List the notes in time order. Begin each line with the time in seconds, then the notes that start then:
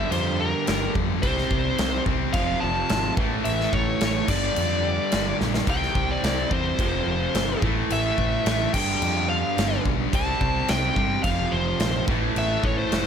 Already playing: G2 D3 G3 E5
0.11 F2 C5, crash
0.40 A#4
0.66 G1 G2 D3 G3, snare, crash
0.95 F2, kick
1.22 C2 C3 G3 C4 C5, kick, crash
1.38 snare
1.51 C2, kick
1.78 C2, snare, crash
2.06 C2 C3 G3 C4, kick
2.33 F1 F2 C3 F5, kick, crash
2.38 F3
2.60 F1 A5
2.89 G#1, snare, crash
3.17 A1 A2 E3 A3, kick
3.45 A1 E5, crash
3.60 snare
3.73 A1 C#5, kick
4.01 A1 A2 E3, snare, crash
4.05 A3
4.28 G1 G2 D3 G3 D5, kick, crash
4.56 F2, crash
5.12 G1 G2 D3 G3, snare, crash
5.41 A#1, snare
5.54 snare
5.66 C2 C3 G3 C4 G5, kick, crash
5.83 snare
5.95 C2, kick
6.11 D5
6.23 C2, snare, crash
6.50 E2 C3 G3 C4 C5, kick
6.79 F1 F2 C3 F3, kick, crash
7.06 F1
7.34 G1, snare, crash
7.61 A1 A2 E3 A3, kick
7.90 A1 E5, crash
8.18 A1, kick
8.46 A1 A2 E3 A3, snare, crash
8.73 G1 G2 D3 G3 G5, kick, crash
9.02 F2, crash
9.29 F5
9.56 G1 G2 D3 G3, snare, crash
9.85 B1, kick
10.13 C2 C3 G3 C4 A5, kick, crash
10.41 C2, kick
10.68 C2 G5, snare, crash
10.96 G2 C3 G3 C4, kick
11.23 F1 F2 C3 F3 F5, kick, crash
11.52 F1 C5
11.79 A#1, snare, crash
12.08 A1 A2 E3 A3, kick
12.36 A1 E5, crash
12.63 A1 C#5, kick
12.78 C5
12.91 F1 A2 E3 A3, snare, crash